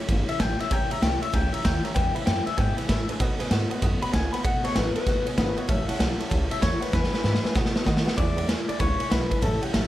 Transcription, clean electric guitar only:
0, 0, Header, 1, 2, 480
1, 0, Start_track
1, 0, Tempo, 311365
1, 1093, Time_signature, 4, 2, 24, 8
1, 15216, End_track
2, 0, Start_track
2, 0, Title_t, "Clean electric guitar"
2, 0, Program_c, 0, 27
2, 448, Note_on_c, 0, 76, 122
2, 621, Note_off_c, 0, 76, 0
2, 621, Note_on_c, 0, 79, 97
2, 915, Note_off_c, 0, 79, 0
2, 936, Note_on_c, 0, 76, 103
2, 1110, Note_off_c, 0, 76, 0
2, 1110, Note_on_c, 0, 79, 95
2, 1403, Note_off_c, 0, 79, 0
2, 1403, Note_on_c, 0, 76, 99
2, 1570, Note_off_c, 0, 76, 0
2, 1584, Note_on_c, 0, 79, 95
2, 1877, Note_off_c, 0, 79, 0
2, 1885, Note_on_c, 0, 76, 97
2, 2062, Note_off_c, 0, 76, 0
2, 2062, Note_on_c, 0, 79, 103
2, 2353, Note_off_c, 0, 79, 0
2, 2353, Note_on_c, 0, 76, 94
2, 2543, Note_off_c, 0, 76, 0
2, 2543, Note_on_c, 0, 79, 92
2, 2841, Note_off_c, 0, 79, 0
2, 2841, Note_on_c, 0, 76, 91
2, 2995, Note_off_c, 0, 76, 0
2, 3001, Note_on_c, 0, 79, 107
2, 3310, Note_off_c, 0, 79, 0
2, 3310, Note_on_c, 0, 76, 95
2, 3477, Note_off_c, 0, 76, 0
2, 3484, Note_on_c, 0, 79, 95
2, 3787, Note_off_c, 0, 79, 0
2, 3799, Note_on_c, 0, 76, 86
2, 3965, Note_off_c, 0, 76, 0
2, 3965, Note_on_c, 0, 79, 95
2, 4264, Note_off_c, 0, 79, 0
2, 4264, Note_on_c, 0, 76, 109
2, 4906, Note_off_c, 0, 76, 0
2, 6204, Note_on_c, 0, 83, 104
2, 6366, Note_off_c, 0, 83, 0
2, 6372, Note_on_c, 0, 80, 98
2, 6663, Note_off_c, 0, 80, 0
2, 6670, Note_on_c, 0, 83, 88
2, 6842, Note_off_c, 0, 83, 0
2, 6851, Note_on_c, 0, 78, 96
2, 7149, Note_off_c, 0, 78, 0
2, 7161, Note_on_c, 0, 73, 100
2, 7328, Note_off_c, 0, 73, 0
2, 7329, Note_on_c, 0, 71, 96
2, 7627, Note_off_c, 0, 71, 0
2, 7646, Note_on_c, 0, 71, 108
2, 8107, Note_off_c, 0, 71, 0
2, 8292, Note_on_c, 0, 71, 106
2, 8604, Note_off_c, 0, 71, 0
2, 8604, Note_on_c, 0, 73, 106
2, 8778, Note_off_c, 0, 73, 0
2, 8778, Note_on_c, 0, 76, 89
2, 9075, Note_off_c, 0, 76, 0
2, 9075, Note_on_c, 0, 78, 102
2, 10005, Note_off_c, 0, 78, 0
2, 10041, Note_on_c, 0, 76, 91
2, 10200, Note_off_c, 0, 76, 0
2, 10206, Note_on_c, 0, 73, 102
2, 10510, Note_off_c, 0, 73, 0
2, 10510, Note_on_c, 0, 71, 94
2, 10673, Note_off_c, 0, 71, 0
2, 10692, Note_on_c, 0, 71, 112
2, 11620, Note_off_c, 0, 71, 0
2, 12601, Note_on_c, 0, 74, 109
2, 13050, Note_off_c, 0, 74, 0
2, 13393, Note_on_c, 0, 74, 91
2, 13555, Note_off_c, 0, 74, 0
2, 13568, Note_on_c, 0, 73, 104
2, 14040, Note_off_c, 0, 73, 0
2, 14046, Note_on_c, 0, 71, 101
2, 14523, Note_on_c, 0, 69, 92
2, 14543, Note_off_c, 0, 71, 0
2, 14824, Note_off_c, 0, 69, 0
2, 14824, Note_on_c, 0, 67, 92
2, 14990, Note_off_c, 0, 67, 0
2, 14990, Note_on_c, 0, 69, 100
2, 15216, Note_off_c, 0, 69, 0
2, 15216, End_track
0, 0, End_of_file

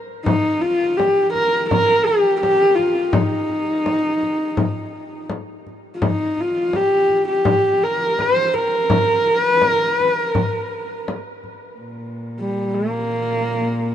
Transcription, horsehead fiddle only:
0, 0, Header, 1, 2, 480
1, 0, Start_track
1, 0, Tempo, 721154
1, 165, Time_signature, 4, 2, 24, 8
1, 5446, Tempo, 726392
1, 9256, End_track
2, 0, Start_track
2, 0, Title_t, "Horsehead fiddle"
2, 0, Program_c, 0, 110
2, 163, Note_on_c, 0, 63, 95
2, 406, Note_on_c, 0, 65, 94
2, 416, Note_off_c, 0, 63, 0
2, 648, Note_on_c, 0, 67, 86
2, 658, Note_off_c, 0, 65, 0
2, 884, Note_off_c, 0, 67, 0
2, 888, Note_on_c, 0, 70, 92
2, 1109, Note_off_c, 0, 70, 0
2, 1132, Note_on_c, 0, 70, 100
2, 1366, Note_on_c, 0, 67, 86
2, 1376, Note_off_c, 0, 70, 0
2, 1597, Note_off_c, 0, 67, 0
2, 1601, Note_on_c, 0, 67, 100
2, 1831, Note_on_c, 0, 65, 87
2, 1841, Note_off_c, 0, 67, 0
2, 2083, Note_on_c, 0, 63, 88
2, 2093, Note_off_c, 0, 65, 0
2, 3522, Note_off_c, 0, 63, 0
2, 3957, Note_on_c, 0, 65, 56
2, 4011, Note_on_c, 0, 63, 84
2, 4021, Note_off_c, 0, 65, 0
2, 4263, Note_on_c, 0, 65, 86
2, 4273, Note_off_c, 0, 63, 0
2, 4499, Note_on_c, 0, 67, 92
2, 4509, Note_off_c, 0, 65, 0
2, 4844, Note_off_c, 0, 67, 0
2, 4848, Note_on_c, 0, 67, 84
2, 5215, Note_on_c, 0, 70, 91
2, 5225, Note_off_c, 0, 67, 0
2, 5462, Note_on_c, 0, 72, 101
2, 5472, Note_off_c, 0, 70, 0
2, 5679, Note_on_c, 0, 70, 100
2, 5689, Note_off_c, 0, 72, 0
2, 6274, Note_off_c, 0, 70, 0
2, 6274, Note_on_c, 0, 71, 100
2, 6432, Note_off_c, 0, 71, 0
2, 6432, Note_on_c, 0, 70, 100
2, 6611, Note_off_c, 0, 70, 0
2, 6611, Note_on_c, 0, 71, 100
2, 6769, Note_off_c, 0, 71, 0
2, 6769, Note_on_c, 0, 70, 100
2, 7358, Note_off_c, 0, 70, 0
2, 8233, Note_on_c, 0, 55, 65
2, 8456, Note_on_c, 0, 58, 85
2, 8466, Note_off_c, 0, 55, 0
2, 9256, Note_off_c, 0, 58, 0
2, 9256, End_track
0, 0, End_of_file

